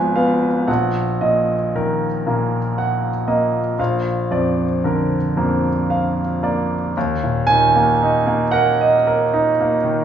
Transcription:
0.00 0.63 G#1 medium
0.00 0.71 G#2 medium
0.00 0.70 F3 medium
0.00 0.16 B3 soft
0.00 0.71 B4 medium
0.00 0.16 F5 medium
0.00 0.47 G#5 medium
0.16 0.68 B3 soft
0.16 0.68 F5 medium
0.68 3.74 A#1 medium
0.68 1.53 F#5 soft
1.21 2.06 A#2 soft
1.21 2.06 D#5 soft
1.76 2.58 D#3 soft
1.76 2.58 A#4 soft
2.26 3.08 A#2 soft
2.26 3.08 A#3 soft
2.78 3.58 F#5 soft
3.28 3.78 A#3 soft
3.28 3.78 D#5 soft
3.79 6.92 A#1 medium
3.79 4.63 F5 soft
4.31 5.16 F2 soft
4.31 5.16 D5 soft
4.84 5.68 D3 soft
4.84 5.68 A#4 soft
5.37 6.21 F2 soft
5.37 6.21 A#3 soft
5.90 6.75 F5 soft
6.43 6.96 A#3 soft
6.43 6.96 D5 soft
6.97 10.05 D#2 medium
7.24 7.65 A#2 soft
7.47 7.91 D#3 soft
7.47 8.53 G#5 medium
7.76 8.17 A#3 soft
8.03 8.44 D#4 soft
8.26 8.69 A#3 soft
8.51 8.96 A#4 medium
8.51 10.05 F#5 medium
8.81 9.23 D#5 medium
9.07 9.49 A#4 soft
9.34 9.75 D#4 medium
9.60 10.01 A#3 soft
9.84 10.05 D#3 soft

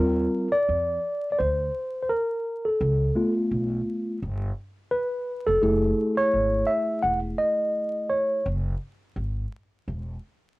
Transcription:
0.00 0.26 D#2 loud
0.00 0.47 G3 medium
0.00 0.47 C4 medium
0.00 0.47 F4 medium
0.00 0.55 A#4 medium
0.52 1.29 D5 loud
0.69 0.96 F2 medium
1.32 1.39 D5 medium
1.38 1.67 D2 medium
1.38 2.01 C5 medium
2.03 2.09 C5 medium
2.09 2.67 A#4 medium
2.65 3.32 A4 medium
2.80 3.08 C#2 loud
3.15 4.18 A3 medium
3.15 4.18 B3 soft
3.15 4.18 F4 medium
3.51 3.79 B1 medium
4.22 4.50 G1 medium
4.91 5.49 B4 medium
5.47 5.60 F1 medium
5.47 6.14 A4 medium
5.62 5.91 F#1 loud
5.62 8.41 A3 medium
5.62 8.41 E4 medium
5.62 8.41 G#4 medium
6.17 6.70 C#5 loud
6.34 6.61 G#1 medium
6.67 7.01 E5 loud
7.03 7.32 E1 medium
7.03 7.19 F#5 loud
7.39 8.12 D#5 loud
8.10 8.46 C#5 medium
8.46 8.73 F#1 loud
9.16 9.44 G#1 medium
9.88 10.15 E1 medium

